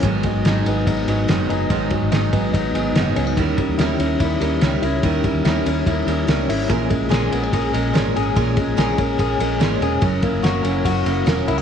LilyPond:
<<
  \new Staff \with { instrumentName = "Clean electric guitar" } { \time 4/4 \key gis \minor \tempo 4 = 144 gis,8 fis8 dis'8 b8 dis'8 fis8 b8 dis'8 | gis,8 fis8 dis'8 b8 dis'8 fis8 b8 cis'16 dis'16 | dis8 g8 e'8 cis'8 e'8 g8 cis'8 e'8 | dis8 g8 e'8 cis'8 e'8 g8 cis'8 e'8 |
ais,8 gis8 gis'8 b16 cis'16 gis'8 gis8 cis'8 gis'8 | ais,8 gis8 gis'8 cis'8 gis'8 gis8 cis'8 gis'8 | fis,8 ais8 fis'8 cis'8 fis'8 ais8 cis'8 e'16 fis'16 | }
  \new Staff \with { instrumentName = "Steel-string acoustic guitar" } { \time 4/4 \key gis \minor <gis, dis fis b dis' gis'>8 <fis b dis' gis'>8 <gis, dis fis b dis' gis'>8 <fis b dis' gis'>8 <fis b dis' gis'>8 <fis b dis' gis'>8 <gis, dis fis b dis' gis'>8 <fis b dis' gis'>8 | <gis, dis fis b dis' gis'>8 <fis b dis' gis'>8 <gis, dis fis b dis' gis'>8 <fis b dis' gis'>8 <fis b dis' gis'>8 <fis b dis' gis'>8 <gis, dis fis b dis' gis'>8 <fis b dis' gis'>8 | <dis g cis' e' ais'>8 <cis' e' ais'>8 <dis g cis' e' ais'>8 <cis' e' ais'>8 <g cis' e' ais'>8 <cis' e' ais'>8 <dis g cis' e' ais'>8 <cis' e' ais'>8 | <dis g cis' e' ais'>8 <cis' e' ais'>8 <dis g cis' e' ais'>8 <cis' e' ais'>8 <g cis' e' ais'>8 <cis' e' ais'>8 <dis g cis' e' ais'>8 <cis' e' ais'>8 |
<ais, e gis cis' gis' ais'>8 <gis cis' gis' ais'>8 <ais, e gis cis' gis' ais'>8 <gis cis' gis' ais'>8 <gis cis' gis' ais'>8 <gis cis' gis' ais'>8 <ais, e gis cis' gis' ais'>8 <gis cis' gis' ais'>8 | <ais, e gis cis' gis' ais'>8 <gis cis' gis' ais'>8 <ais, e gis cis' gis' ais'>8 <gis cis' gis' ais'>8 <gis cis' gis' ais'>8 <gis cis' gis' ais'>8 <ais, e gis cis' gis' ais'>8 <gis cis' gis' ais'>8 | <fis cis' e' ais'>8 <cis' e' ais'>8 <fis cis' e' ais'>8 <cis' e' ais'>8 <fis cis' e' ais'>8 <cis' e' ais'>8 <fis cis' e' ais'>8 <cis' e' ais'>8 | }
  \new Staff \with { instrumentName = "Fingered electric bass" } { \clef bass \time 4/4 \key gis \minor gis,,8 r16 gis,,16 gis,,8 gis,,8 gis,,8 gis,,8 fis,,8 fis,,8 | gis,,8 r16 gis,,16 gis,,8 gis,,8 gis,,8 gis,,8 fis,,8 cis,8 | dis,8 r16 dis,16 dis,8 dis,8 dis,8 dis,8 cis,8 cis,8 | dis,8 r16 dis,16 dis,8 dis,8 dis,8 dis,8 cis,8 gis,,8 |
ais,,8 r16 ais,,16 ais,,8 ais,,8 ais,,8 ais,,8 gis,,8 gis,,8 | ais,,8 r16 ais,,16 ais,,8 ais,,8 ais,,8 ais,,8 gis,,8 e,,8 | fis,,8 r16 fis,,16 fis,,8 fis,,8 fis,,8 fis,,8 e,,8 cis,8 | }
  \new DrumStaff \with { instrumentName = "Drums" } \drummode { \time 4/4 <hhp bd cymr>8 <bd cymr>8 <cymr sn>8 cymr8 <bd cymr>8 cymr8 <cymr sn>8 cymr8 | <bd cymr>8 <bd cymr>8 <cymr sn>8 <bd cymr>8 <bd cymr>8 cymr8 <cymr sn>8 cymr8 | <bd cymr>8 <bd cymr>8 <cymr sn>8 cymr8 <bd cymr>8 cymr8 <cymr sn>8 cymr8 | <bd cymr>8 <bd cymr>8 <cymr sn>8 cymr8 <bd cymr>8 cymr8 <cymr sn>8 <hho cymr>8 |
<hhp bd cymr>8 <bd cymr>8 <cymr sn>8 cymr8 <bd cymr>8 cymr8 <cymr sn>8 cymr8 | <bd cymr>8 <bd cymr>8 <cymr sn>8 <bd cymr>8 <bd cymr>8 cymr8 <cymr sn>8 cymr8 | <bd cymr>8 <bd cymr>8 <cymr sn>8 cymr8 <bd cymr>8 cymr8 <cymr sn>8 cymr8 | }
>>